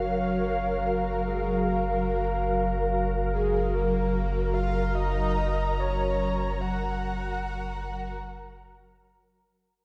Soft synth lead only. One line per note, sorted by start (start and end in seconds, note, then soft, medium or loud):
0.03 0.87 C#5 medium
0.86 1.28 A#4 medium
1.27 1.67 G#4 medium
1.68 2.87 A#4 medium
3.32 3.75 G#4 medium
3.74 4.55 A#4 medium
4.54 4.96 F5 medium
4.95 5.81 D#5 medium
5.80 6.62 C#5 medium
6.61 9.08 F#5 loud